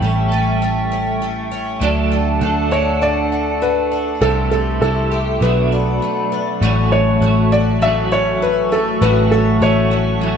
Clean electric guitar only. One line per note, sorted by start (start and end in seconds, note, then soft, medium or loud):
0.00 0.31 G3 medium
0.00 0.32 A3 medium
0.00 0.32 C#4 medium
0.06 0.27 A4 medium
0.28 1.84 A4 medium
0.33 1.82 C#4 medium
0.37 1.81 G3 soft
0.37 1.82 A3 medium
1.80 2.41 D3 medium
1.80 2.39 F#3 medium
1.80 2.42 A3 medium
1.80 2.42 D4 medium
1.84 2.46 A4 medium
2.41 2.71 F#3 medium
2.41 2.72 A3 medium
2.41 2.73 D4 medium
2.46 2.66 A4 medium
2.68 4.24 A4 medium
2.75 4.23 D4 medium
2.80 4.22 A3 soft
4.20 4.81 C3 medium
4.20 4.79 E3 medium
4.20 4.82 A3 medium
4.20 4.83 E4 medium
4.25 4.83 G4 medium
4.80 5.11 E3 medium
4.80 5.12 A3 medium
4.80 5.12 E4 medium
4.86 5.09 G4 medium
5.10 5.43 E4 soft
5.10 5.41 G4 medium
5.16 5.43 A3 soft
5.40 6.61 B2 medium
5.40 6.62 F#3 medium
5.45 6.63 A3 medium
5.45 6.64 D4 medium
5.49 6.64 F#4 medium
6.61 7.21 A2 medium
6.61 7.22 E3 medium
6.61 7.20 F#3 medium
6.61 7.23 A3 medium
6.61 7.23 C#4 medium
6.65 7.26 F#4 loud
7.21 7.83 F#3 soft
7.21 7.84 A3 medium
7.26 7.87 F#4 medium
7.79 8.99 A2 medium
7.79 9.00 E3 medium
7.83 9.02 F#3 medium
7.83 9.02 A3 medium
7.83 9.02 C#4 medium
7.88 9.04 F#4 medium
9.00 9.61 A2 medium
9.00 9.61 E3 medium
9.00 9.60 F#3 medium
9.00 9.62 A3 medium
9.00 9.63 C#4 medium
9.04 9.66 F#4 medium
9.60 9.91 F#3 soft
9.60 9.92 A3 medium
9.64 9.91 C#4 medium
9.64 9.89 F#4 medium
9.90 10.22 C#4 soft
9.90 10.21 F#4 medium
9.94 10.21 F#3 soft
9.94 10.23 A3 soft
10.19 10.37 A2 medium
10.19 10.37 E3 medium
10.19 10.37 F#3 medium
10.24 10.37 A3 medium
10.24 10.37 C#4 medium
10.24 10.37 F#4 medium